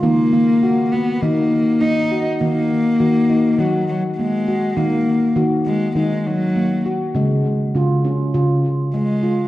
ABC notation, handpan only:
X:1
M:4/4
L:1/8
Q:"Swing 16ths" 1/4=101
K:Ebm
V:1 name="Handpan"
B,2 G B, E2 B, G | B,2 G E G2 B, G | B,2 G B, E2 B, G | A,2 F D F2 A, F |]
V:2 name="Handpan" clef=bass
E, B,3 E, z3 | E,2 E,2 E,4 | E,2 E,2 E,4 | D,2 D,2 D,4 |]